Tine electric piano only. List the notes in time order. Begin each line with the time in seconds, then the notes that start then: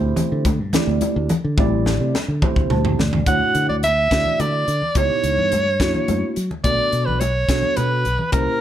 Already playing: A3 C4 E4 G4 C5
0.73 A3 C4 E4 G4 D5
1.58 A3 C4 E4 G4 D5
2.43 A3 C4 E4 G4 C5
2.72 A5
3.00 D5
3.27 A3 D4 E4 F#4 C#5
4.11 A3 D4 E4 F#4 D5
4.95 B3 D#4 E4 G4 C#5
5.80 A#3 D4 E4 F#4 C#5
6.64 B3 D4 F#4 A4 D5
7.49 B3 D4 F#4 A4 C#5
8.32 A#3 C#4 E4 G4 C5